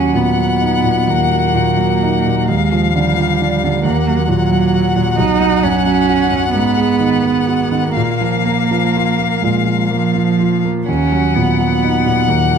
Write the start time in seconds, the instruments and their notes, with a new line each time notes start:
Already playing: grand piano D#2 F#3, cello C#4, violin F#5
0.14 grand piano A#2, cello B3
0.39 grand piano F#3
0.61 grand piano D#4
0.84 grand piano A#2
1.08 grand piano D#2, cello A#3
1.31 grand piano F#3
1.54 grand piano A#2
1.77 grand piano F#3
2.02 grand piano D#4
2.26 grand piano A#2
2.48 grand piano D#2, cello G#3, violin F5
2.72 grand piano F3
2.94 grand piano D3, cello G3
3.18 grand piano F3
3.41 grand piano D4
3.64 grand piano D3
3.84 grand piano D#2, cello A#3, violin F#5
4.08 grand piano F#3
4.29 grand piano A#2, cello F#3
4.51 grand piano F#3
4.74 grand piano F#4
4.96 grand piano A#2
5.18 grand piano B1, cello D#4
5.40 grand piano F#3
5.63 grand piano F#2, cello C#4
5.86 grand piano F#3
6.09 grand piano F#4
6.31 grand piano F#2
6.53 grand piano G#2, cello B3
6.77 grand piano G#3
7.00 grand piano D#3
7.24 grand piano G#3
7.47 grand piano F#4
7.72 grand piano D#3
7.94 grand piano A#2, cello A#3, violin F5
8.21 grand piano F3
8.45 grand piano A#3
8.71 grand piano F3
8.96 grand piano F4
9.19 grand piano A#3
9.41 grand piano A#2, cello G#3
9.66 grand piano F3
9.88 cello F3, grand piano A#3
10.15 grand piano F3
10.40 grand piano F4
10.65 grand piano A#3
10.88 grand piano D#2, cello C#4, violin F#5
11.12 grand piano F#3
11.35 grand piano A#2, cello B3
11.60 grand piano F#3
11.84 grand piano D#4
12.06 grand piano A#2
12.28 grand piano D#2, cello A#3
12.51 grand piano F#3